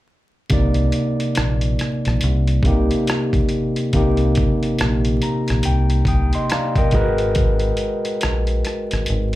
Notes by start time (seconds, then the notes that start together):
0.50 C2 C3 A#3 D#4 D5, kick, closed hi-hat
0.74 closed hi-hat
0.92 closed hi-hat
1.20 closed hi-hat
1.35 A#1, cross-stick, closed hi-hat
1.61 closed hi-hat
1.79 cross-stick, closed hi-hat
2.05 A#1, cross-stick, closed hi-hat
2.21 C2, closed hi-hat
2.48 closed hi-hat
2.63 C2 C3 A#3 D#4, kick, closed hi-hat
2.67 G4
2.91 closed hi-hat
3.07 cross-stick, closed hi-hat
3.33 kick, closed hi-hat
3.49 closed hi-hat
3.76 closed hi-hat
3.93 C2 C3 A#3 D#4 G4, kick, closed hi-hat
4.17 closed hi-hat
4.35 kick, closed hi-hat
4.63 closed hi-hat
4.78 A#1, cross-stick, closed hi-hat
5.05 closed hi-hat
5.22 A#5, closed hi-hat
5.48 A#1, cross-stick, closed hi-hat
5.63 C2 G5, closed hi-hat
5.90 closed hi-hat
6.05 C2 G5 D#6, kick, closed hi-hat
6.33 D#5 C6, closed hi-hat
6.50 D5 F5 A#5, cross-stick, closed hi-hat
6.75 A#4 D#5 G5, kick, closed hi-hat
6.91 G#1 G#3 F#4 D#5, kick, closed hi-hat
6.95 A#4 B4
7.18 closed hi-hat
7.35 kick, closed hi-hat
7.60 closed hi-hat
7.77 closed hi-hat
8.05 closed hi-hat
8.21 A#1, cross-stick, closed hi-hat
8.47 closed hi-hat
8.65 cross-stick, closed hi-hat
8.91 G#1, cross-stick, closed hi-hat
9.06 G#1, closed hi-hat